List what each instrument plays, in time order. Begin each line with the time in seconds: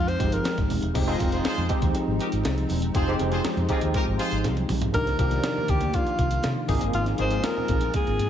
Already playing: fingered electric bass F2, tine electric piano F3 G#3 C4 D#4, analog synth pad F3 G#3 C4 D#4
0.08 alto saxophone C5, closed hi-hat
0.19 fingered electric bass G1, tine electric piano F3 G#3 C4 D#4 G4, kick, closed hi-hat, muted conga
0.32 alto saxophone A#4, closed hi-hat
0.44 snare, closed hi-hat, muted conga, high conga
0.58 fingered electric bass G#1, kick, snare, closed hi-hat
0.70 fingered electric bass D#1, open hi-hat, muted conga, low conga
0.82 fingered electric bass E1, closed hi-hat
0.94 fingered electric bass F1, tine electric piano F3 G#3 C4 D#4 G4, analog synth pad F3 G#3 C4 D#4, kick, closed hi-hat, crash, muted conga
1.06 tine electric piano F3 G#3 C4 D#4 F4, horn section G#4 C5 D#5, snare
1.19 fingered electric bass F1, kick, closed hi-hat, muted conga, high conga
1.32 horn section F4 G#4 C5, snare, closed hi-hat
1.44 horn section F4 G#4 C5, muted fingered electric bass stroke, snare, closed hi-hat, muted conga, high conga
1.58 fingered electric bass F2, closed hi-hat, low conga
1.69 tine electric piano F3 G#3 C4 D#4 G4, kick, closed hi-hat, muted conga, high conga
1.82 fingered electric bass D#2, kick, closed hi-hat
1.95 closed hi-hat, muted conga, high conga
2.08 fingered electric bass G#1
2.19 horn section D#4 G4 A#4, closed hi-hat, muted conga
2.32 fingered electric bass G#1, closed hi-hat
2.43 fingered electric bass C2, snare, closed hi-hat, high conga
2.58 closed hi-hat
2.69 fingered electric bass E1, open hi-hat, muted conga, low conga
2.82 closed hi-hat
2.94 fingered electric bass F1, tine electric piano F3 G#3 C4 D#4 G4, horn section F4 G#4 C5, kick, closed hi-hat, muted conga
3.08 tine electric piano F3 G#3 C4 D#4 G4, snare
3.19 fingered electric bass F1, closed hi-hat, muted conga, high conga
3.31 horn section F4 G#4 C5, snare, closed hi-hat
3.44 snare, closed hi-hat, muted conga, high conga
3.57 fingered electric bass F2, closed hi-hat, low conga
3.68 tine electric piano F3 G#3 C4 D#4 G4, horn section D#4 F4 G#4, kick, closed hi-hat, high conga
3.81 fingered electric bass D#2, closed hi-hat
3.94 horn section D#4 G4 A#4, kick, closed hi-hat, muted conga, high conga
4.07 fingered electric bass G#1
4.18 horn section F4 G#4 C5, closed hi-hat, muted conga
4.31 fingered electric bass G#1, closed hi-hat
4.44 fingered electric bass C2, snare, closed hi-hat, muted conga, high conga
4.57 closed hi-hat, high tom
4.69 fingered electric bass B1, mid tom, open hi-hat, muted conga, low conga
4.81 closed hi-hat, floor tom
4.93 fingered electric bass C2, analog synth pad C3 D#3 A#3 F4 D5, tine electric piano F3 A#3 D4 D#4 G4, alto saxophone A#4, kick, closed hi-hat, muted conga
5.07 snare, closed hi-hat
5.18 fingered electric bass C2, tine electric piano F3 A#3 D4 D#4 G4, alto saxophone A#4, kick, closed hi-hat, high conga
5.31 snare, closed hi-hat
5.44 snare, closed hi-hat, muted conga, high conga
5.57 low conga
5.68 fingered electric bass D2, alto saxophone G4, kick, closed hi-hat, muted conga, high conga
5.81 closed hi-hat, low conga
5.94 alto saxophone F4, kick, closed hi-hat, muted conga, high conga
6.07 closed hi-hat
6.19 fingered electric bass C2, kick, closed hi-hat, muted conga
6.31 closed hi-hat
6.43 fingered electric bass C3, snare, closed hi-hat, high conga
6.68 fingered electric bass G#1, tine electric piano F3 A#3 C4 D#4 G#4, analog synth pad G#3 C4, kick, open hi-hat, muted conga, low conga
6.81 fingered electric bass G1, closed hi-hat
6.93 fingered electric bass G#1, alto saxophone F4, closed hi-hat, muted conga
7.06 snare, closed hi-hat
7.18 fingered electric bass G#1, tine electric piano F3 A#3 C4 D#4 G#4, alto saxophone C5, closed hi-hat, high conga
7.31 snare, closed hi-hat
7.44 alto saxophone A#4, snare, closed hi-hat, high conga
7.57 low conga
7.68 fingered electric bass A#1, kick, closed hi-hat, muted conga, high conga
7.81 closed hi-hat, low conga
7.94 alto saxophone G#4, kick, closed hi-hat, muted conga, high conga
8.07 fingered electric bass G#1, closed hi-hat
8.19 fingered electric bass G#2, closed hi-hat